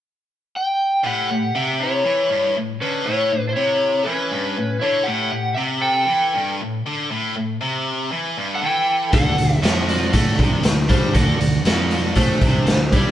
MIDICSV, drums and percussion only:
0, 0, Header, 1, 2, 480
1, 0, Start_track
1, 0, Tempo, 505902
1, 985, Time_signature, 4, 2, 24, 8
1, 12439, End_track
2, 0, Start_track
2, 0, Title_t, "Drums"
2, 8661, Note_on_c, 9, 42, 74
2, 8663, Note_on_c, 9, 36, 105
2, 8756, Note_off_c, 9, 42, 0
2, 8758, Note_off_c, 9, 36, 0
2, 8901, Note_on_c, 9, 42, 55
2, 8995, Note_off_c, 9, 42, 0
2, 9141, Note_on_c, 9, 42, 74
2, 9158, Note_on_c, 9, 38, 97
2, 9236, Note_off_c, 9, 42, 0
2, 9253, Note_off_c, 9, 38, 0
2, 9381, Note_on_c, 9, 42, 56
2, 9476, Note_off_c, 9, 42, 0
2, 9613, Note_on_c, 9, 42, 77
2, 9618, Note_on_c, 9, 36, 93
2, 9708, Note_off_c, 9, 42, 0
2, 9712, Note_off_c, 9, 36, 0
2, 9749, Note_on_c, 9, 38, 27
2, 9844, Note_off_c, 9, 38, 0
2, 9856, Note_on_c, 9, 42, 56
2, 9858, Note_on_c, 9, 36, 102
2, 9951, Note_off_c, 9, 42, 0
2, 9953, Note_off_c, 9, 36, 0
2, 10088, Note_on_c, 9, 42, 76
2, 10105, Note_on_c, 9, 38, 97
2, 10183, Note_off_c, 9, 42, 0
2, 10200, Note_off_c, 9, 38, 0
2, 10335, Note_on_c, 9, 42, 66
2, 10339, Note_on_c, 9, 36, 105
2, 10429, Note_off_c, 9, 42, 0
2, 10434, Note_off_c, 9, 36, 0
2, 10574, Note_on_c, 9, 42, 86
2, 10580, Note_on_c, 9, 36, 104
2, 10669, Note_off_c, 9, 42, 0
2, 10675, Note_off_c, 9, 36, 0
2, 10822, Note_on_c, 9, 42, 59
2, 10917, Note_off_c, 9, 42, 0
2, 11056, Note_on_c, 9, 42, 83
2, 11073, Note_on_c, 9, 38, 101
2, 11150, Note_off_c, 9, 42, 0
2, 11167, Note_off_c, 9, 38, 0
2, 11298, Note_on_c, 9, 42, 59
2, 11393, Note_off_c, 9, 42, 0
2, 11532, Note_on_c, 9, 42, 81
2, 11541, Note_on_c, 9, 36, 94
2, 11627, Note_off_c, 9, 42, 0
2, 11636, Note_off_c, 9, 36, 0
2, 11778, Note_on_c, 9, 42, 59
2, 11780, Note_on_c, 9, 36, 94
2, 11872, Note_off_c, 9, 42, 0
2, 11875, Note_off_c, 9, 36, 0
2, 12016, Note_on_c, 9, 42, 73
2, 12033, Note_on_c, 9, 38, 102
2, 12111, Note_off_c, 9, 42, 0
2, 12128, Note_off_c, 9, 38, 0
2, 12263, Note_on_c, 9, 42, 58
2, 12264, Note_on_c, 9, 36, 103
2, 12357, Note_off_c, 9, 42, 0
2, 12359, Note_off_c, 9, 36, 0
2, 12439, End_track
0, 0, End_of_file